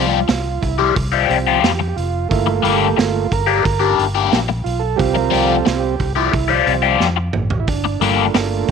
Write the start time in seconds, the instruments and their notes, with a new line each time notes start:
Already playing: fingered electric bass C2, overdriven electric guitar F3 G3 F4 G4, transistor combo organ F4
0.28 fingered electric bass C2, muted overdriven electric guitar stroke, snare, open hi-hat
0.62 fingered electric bass C2, transistor combo organ E4, kick, open hi-hat
0.79 overdriven electric guitar F3 G3 F4 G4
0.95 fingered electric bass C2, muted overdriven electric guitar stroke, kick, open hi-hat
1.12 overdriven electric guitar F3 G3 F4 G4
1.29 fingered electric bass C2, transistor combo organ G3 C4 F4, open hi-hat
1.47 overdriven electric guitar F3 G3 F4 G4
1.62 fingered electric bass F2, transistor combo organ G4, snare, open hi-hat
1.79 muted overdriven electric guitar stroke
1.89 transistor combo organ G4
1.96 fingered electric bass F1, transistor combo organ F4, open hi-hat
2.29 fingered electric bass G1, transistor combo organ A3 A#3 E4 F4, kick, open hi-hat
2.47 muted overdriven electric guitar stroke
2.55 transistor combo organ F4
2.63 fingered electric bass G1, overdriven electric guitar G3 A#3 D4 G4, open hi-hat
2.75 transistor combo organ G4
2.97 fingered electric bass G1, transistor combo organ F4, muted overdriven electric guitar stroke, snare, open hi-hat
3.32 fingered electric bass G1, transistor combo organ A#4, kick, open hi-hat
3.47 overdriven electric guitar G3 A#3 D4 G4
3.64 fingered electric bass G1, muted overdriven electric guitar stroke, kick, open hi-hat
3.80 overdriven electric guitar G3 A#3 D4 G4
3.99 fingered electric bass G1, open hi-hat
4.15 overdriven electric guitar G3 A#3 D4 G4
4.32 fingered electric bass A#1, snare, open hi-hat
4.49 muted overdriven electric guitar stroke
4.64 fingered electric bass B1, transistor combo organ F4, open hi-hat
4.79 transistor combo organ A4
4.96 fingered electric bass C2, transistor combo organ G3 C4 F4 G4, kick, open hi-hat
5.13 transistor combo organ A#4, muted overdriven electric guitar stroke
5.31 fingered electric bass C2, overdriven electric guitar F3 G3 F4 G4, open hi-hat
5.48 transistor combo organ A4
5.65 fingered electric bass C2, transistor combo organ F4, muted overdriven electric guitar stroke, snare, open hi-hat
5.80 transistor combo organ G4
6.00 fingered electric bass C2, kick, open hi-hat
6.16 overdriven electric guitar F3 G3 F4 G4, transistor combo organ E4
6.32 fingered electric bass C2, muted overdriven electric guitar stroke, kick, open hi-hat
6.48 overdriven electric guitar F3 G3 F4 G4, transistor combo organ F4
6.67 fingered electric bass C2, transistor combo organ G3 C4 F4, open hi-hat
6.82 overdriven electric guitar F3 G3 F4 G4
7.00 fingered electric bass F2, snare
7.16 muted overdriven electric guitar stroke
7.33 fingered electric bass A1, mid tom
7.50 floor tom
7.60 transistor combo organ E4
7.68 fingered electric bass G1, transistor combo organ D4, kick, open hi-hat
7.85 muted overdriven electric guitar stroke
8.00 fingered electric bass G1, overdriven electric guitar G3 A#3 D4 G4, transistor combo organ A3 A#3 F4, open hi-hat
8.34 fingered electric bass G1, muted overdriven electric guitar stroke, snare, open hi-hat
8.68 open hi-hat